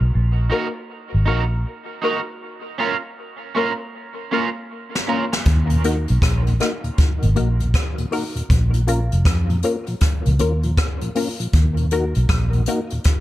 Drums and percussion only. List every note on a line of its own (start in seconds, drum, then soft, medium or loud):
4.95 snare medium
5.33 snare medium
5.45 kick loud
5.45 closed hi-hat medium
5.70 closed hi-hat medium
5.84 closed hi-hat medium
6.08 closed hi-hat medium
6.22 kick loud
6.22 cross-stick loud
6.22 closed hi-hat medium
6.47 closed hi-hat soft
6.60 cross-stick medium
6.60 closed hi-hat medium
6.84 closed hi-hat soft
6.98 kick loud
6.98 closed hi-hat medium
7.22 closed hi-hat medium
7.36 closed hi-hat medium
7.60 closed hi-hat medium
7.74 kick loud
7.74 cross-stick loud
7.74 closed hi-hat medium
7.98 closed hi-hat soft
8.12 open hi-hat medium
8.36 closed hi-hat soft
8.50 kick loud
8.50 closed hi-hat medium
8.74 closed hi-hat medium
8.87 closed hi-hat medium
9.12 closed hi-hat medium
9.25 kick loud
9.25 cross-stick loud
9.25 closed hi-hat medium
9.50 closed hi-hat soft
9.62 closed hi-hat medium
9.86 closed hi-hat soft
10.00 kick loud
10.00 cross-stick medium
10.00 closed hi-hat loud
10.25 closed hi-hat medium
10.39 closed hi-hat medium
10.63 closed hi-hat soft
10.77 kick loud
10.77 cross-stick loud
10.77 closed hi-hat loud
11.01 closed hi-hat medium
11.15 open hi-hat medium
11.39 closed hi-hat soft
11.53 kick loud
11.53 closed hi-hat medium
11.77 closed hi-hat medium
11.91 closed hi-hat medium
12.15 closed hi-hat medium
12.29 kick loud
12.29 cross-stick loud
12.29 closed hi-hat medium
12.53 closed hi-hat soft
12.66 closed hi-hat medium
12.90 closed hi-hat medium
13.04 kick loud
13.04 cross-stick medium
13.04 closed hi-hat medium